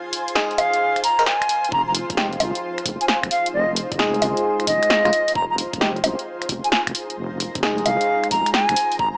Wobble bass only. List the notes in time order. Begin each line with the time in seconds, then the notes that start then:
1.72 F1
2.10 F1
2.40 C2
2.86 F1
3.23 F1
3.54 F1
3.92 F1
4.22 C2
4.67 F1
5.05 F1
5.36 F1
5.73 F1
6.04 C2
6.49 F1
6.87 F1
7.17 F1
7.55 F1
7.85 C2
8.31 F1
8.69 F1
8.99 G#1